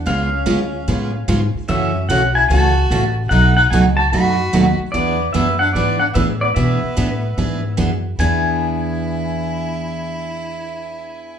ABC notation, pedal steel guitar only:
X:1
M:4/4
L:1/8
Q:"Swing" 1/4=148
K:Emix
V:1 name="Pedal steel guitar"
^e6 z2 | e2 f g a3 z | f f g a b3 z | d2 e f d f e d |
e6 z2 | g8- | g8 |]